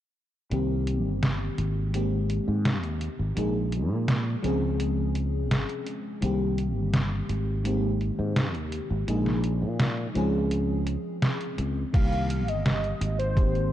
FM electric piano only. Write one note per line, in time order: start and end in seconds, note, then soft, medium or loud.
0.50 1.86 D#3 medium
0.50 1.87 G3 medium
0.50 1.87 A#3 medium
0.50 1.88 C4 medium
0.50 1.88 G4 medium
1.93 3.29 D#3 medium
1.93 3.30 G#3 medium
1.93 3.30 A#3 medium
1.93 3.30 C4 medium
1.93 3.31 G4 medium
3.36 4.36 F3 medium
3.36 4.37 G#3 medium
3.36 4.37 A#3 medium
3.36 4.37 D#4 medium
3.36 4.38 G#4 medium
4.42 6.15 F3 medium
4.42 6.15 G#3 medium
4.42 6.16 C4 medium
4.42 6.16 C#4 medium
4.42 6.16 G#4 medium
6.21 7.58 D#3 medium
6.21 7.58 G3 medium
6.21 7.58 A#3 medium
6.21 7.59 C4 medium
6.21 7.59 G4 medium
7.64 9.01 D#3 medium
7.64 9.01 G#3 medium
7.64 9.01 A#3 medium
7.64 9.02 C4 medium
7.64 9.02 G4 medium
9.07 10.08 F3 medium
9.07 10.08 G#3 medium
9.07 10.09 A#3 medium
9.07 10.09 D#4 medium
9.07 10.09 G#4 medium
10.14 11.86 F3 medium
10.14 11.87 G#3 medium
10.14 11.87 C4 medium
10.14 11.87 C#4 medium
10.14 11.88 G#4 loud
11.93 13.29 D#3 medium
11.93 13.30 G3 medium
11.93 13.30 A#3 medium
11.93 13.30 C4 medium
11.93 13.31 G4 medium
13.36 13.72 D#3 medium
13.36 13.72 G#3 medium
13.36 13.72 A#3 medium
13.36 13.72 C4 medium
13.36 13.72 G4 medium